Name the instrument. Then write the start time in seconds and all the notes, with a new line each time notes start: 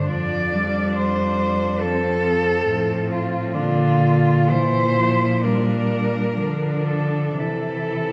cello
0.07 F2 F3 D4 D5
0.52 G3
0.96 C5
1.80 F3 C4 A4
2.25 C4
2.67 A2 F3
3.11 F4
3.53 A#2 D3 D4 F4
4.01 F4
4.50 E3 E4 C5
4.96 F3
5.42 G3 D4 A#4
6.36 D3 F3 D4
6.87 A4
7.38 C3 E3 E4 A4